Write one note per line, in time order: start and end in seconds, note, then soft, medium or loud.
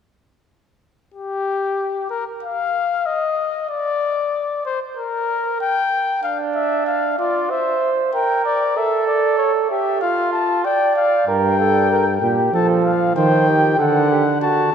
1.14 2.07 G4 medium
2.10 2.25 A#4 medium
2.43 3.08 F5 medium
3.06 3.69 D#5 medium
3.69 4.63 D5 medium
4.66 4.80 C5 medium
4.97 5.59 A#4 medium
5.61 6.23 G5 medium
6.23 7.15 D4 medium
6.23 6.38 F5 medium
6.55 6.86 E5 medium
6.86 7.18 F5 medium
7.18 7.52 F4 medium
7.18 7.52 D5 medium
7.50 8.13 C5 medium
7.50 7.92 E5 medium
8.13 8.74 A#4 medium
8.13 8.43 G5 medium
8.45 8.79 D5 medium
8.77 9.69 A4 medium
8.77 9.07 E5 medium
9.07 9.38 D5 medium
9.38 9.52 C#5 medium
9.69 10.01 G4 medium
9.69 10.00 E5 medium
10.01 10.67 F4 medium
10.01 10.32 F5 medium
10.33 10.63 A5 medium
10.65 11.27 D5 medium
10.65 10.95 G5 medium
10.96 11.26 F5 medium
11.27 12.17 G2 medium
11.27 11.58 A#4 medium
11.27 12.50 G5 medium
11.59 11.89 A4 medium
11.91 12.05 A#4 medium
12.21 12.52 A#2 medium
12.21 12.52 G4 medium
12.53 13.14 F3 medium
12.53 12.93 A4 medium
12.53 12.68 A5 medium
12.84 13.15 F5 medium
13.16 13.78 D#3 medium
13.16 13.45 C5 medium
13.16 13.78 G5 medium
13.48 13.81 G4 medium
13.79 14.71 D3 medium
13.79 14.10 A4 medium
13.79 14.41 F#5 medium
14.10 14.24 G4 medium
14.41 14.72 F#4 medium
14.41 14.75 A5 medium